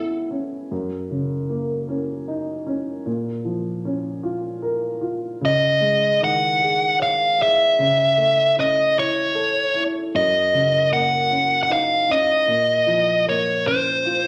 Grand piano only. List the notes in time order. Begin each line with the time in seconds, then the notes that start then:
Already playing: C#3 A3 B3 C#4 E4
0.31 C#4
0.71 F#2
1.11 C#3
1.49 A#3
1.89 C#4
2.28 D#4
2.67 C#4
3.06 A#2
3.45 F3
3.85 C#4
4.23 F4
4.62 A#4
5.01 F4
5.41 C#3
5.80 G#3
6.21 D#3
6.61 G#4
6.99 C#5
7.39 G#4
7.79 C#3
8.17 A3
8.57 C#4
8.96 E4
9.35 A4
9.74 E4
10.15 F#2
10.54 C#3
10.92 A#3
11.31 C#4
11.69 D#4
12.09 C#4
12.47 A#2
12.87 F3
13.26 A#3
13.66 C#4
14.05 F4